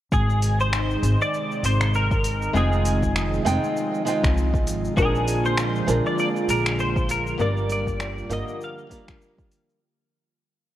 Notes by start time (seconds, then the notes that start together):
0.11 G#1 C3 D#3 G#3 D#4 G#4, kick, shaker
0.30 shaker
0.42 open hi-hat, shaker
0.60 C5, shaker
0.73 finger snap, shaker
0.91 shaker
1.03 G#1, open hi-hat, shaker
1.21 D5, shaker
1.34 shaker
1.51 shaker
1.63 G#1 C5, open hi-hat, shaker
1.81 finger snap, shaker
1.94 A#4, shaker
2.11 kick, shaker
2.24 open hi-hat, shaker
2.42 shaker
2.53 F1 C3 F3 G#3 C4 D#4 F4 G#4 G5, shaker
2.72 shaker
2.85 open hi-hat, shaker
3.02 kick, shaker
3.16 finger snap, shaker
3.33 shaker
3.45 F1 G#3 C4 D#4 F4 G5, open hi-hat, shaker
3.64 shaker
3.77 shaker
3.94 shaker
4.05 G#3 C4 D#4 F4 G5, open hi-hat, shaker
4.23 C2, finger snap, kick, shaker
4.38 shaker
4.54 kick, shaker
4.67 G#1, open hi-hat, shaker
4.85 shaker
4.96 A#1 D3 G#3 A#3 C4 D4 F4 G#4 A#4, kick, shaker
5.15 shaker
5.28 open hi-hat, shaker
5.45 C5, shaker
5.58 finger snap, shaker
5.76 shaker
5.87 A#1 G#3 C4 D4 F4 A#4, open hi-hat, shaker
6.06 D5, shaker
6.18 D5, shaker
6.36 shaker
6.48 A#1 A#4, open hi-hat, shaker
6.66 finger snap, shaker
6.79 C5, shaker
6.96 kick, shaker
7.09 A#4, open hi-hat, shaker
7.27 shaker
7.38 G1 G3 A#3 D4 F4 A#4 D5, shaker
7.57 shaker
7.70 D5, open hi-hat, shaker
7.87 kick, shaker
8.00 finger snap, shaker
8.18 shaker
8.29 G1 D3 G3 A#3 F4 A#4 D#5, open hi-hat, shaker
8.48 shaker
8.61 F5, shaker
8.79 shaker
8.89 G3 A#3 D4 F4 A#4, kick, open hi-hat, shaker
9.08 D2, finger snap, kick, shaker
9.22 shaker
9.38 kick, shaker
9.52 open hi-hat, shaker
9.70 shaker